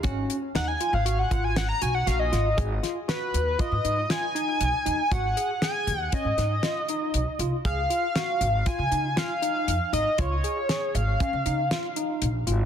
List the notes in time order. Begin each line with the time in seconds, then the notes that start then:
0.03 G#1 C#4 F#4, kick, closed hi-hat
0.30 closed hi-hat
0.55 D#2 D#4 F#5, snare, closed hi-hat
0.68 G#5
0.81 F4, closed hi-hat
0.93 G#1 F5
1.06 F#4, closed hi-hat
1.19 F#5
1.31 G#1 F4, kick, closed hi-hat
1.44 G#5
1.56 F#5, snare, closed hi-hat
1.69 A#5
1.82 B1 F#4 G#5, closed hi-hat
1.95 F#5
2.07 A#1 F#4 F5, snare, closed hi-hat
2.19 D#5
2.32 G#1 F4, snare, closed hi-hat
2.57 G#1 G#4, kick, closed hi-hat
2.83 F4, snare, closed hi-hat
3.08 F#4 B4, snare, closed hi-hat
3.34 D#2, closed hi-hat
3.59 F4 D#5, kick, closed hi-hat
3.72 G#2
3.85 G#2 D#4, closed hi-hat
4.10 F4 G#5, snare, closed hi-hat
4.35 D#4, closed hi-hat
4.61 B1, closed hi-hat
4.86 D#2 D#4, closed hi-hat
5.11 G#1 F#4 F#5, kick, closed hi-hat
5.37 G#4, closed hi-hat
5.62 G#4 G#5, snare, closed hi-hat
5.87 D#2, closed hi-hat
6.01 F#5
6.12 C#4 D#5, kick, closed hi-hat
6.25 G#2
6.38 G#2 D#4, snare, closed hi-hat
6.63 F4, snare, closed hi-hat
6.88 D#4, closed hi-hat
7.14 B1, closed hi-hat
7.39 C2 F4, closed hi-hat
7.65 C#2 G#4 F5, kick, closed hi-hat
7.90 F4, closed hi-hat
8.15 F#4, snare, closed hi-hat
8.41 G#1, closed hi-hat
8.66 F4 G#5, kick, closed hi-hat
8.79 C#3
8.91 C#3 D#4, closed hi-hat
9.17 F4 F5, snare, closed hi-hat
9.42 D#4, closed hi-hat
9.68 F2, closed hi-hat
9.93 G#1 D#4 D#5, closed hi-hat
10.18 C#2 F4 C#5, kick, closed hi-hat
10.44 G#4, closed hi-hat
10.69 G#4, snare, closed hi-hat
10.95 G#1 F5, closed hi-hat
11.20 C#4, kick, closed hi-hat
11.33 C#3
11.46 C#3 D#4, closed hi-hat
11.71 F4, snare, closed hi-hat
11.96 D#4, closed hi-hat
12.22 A#1, closed hi-hat
12.47 G#1 F4, closed hi-hat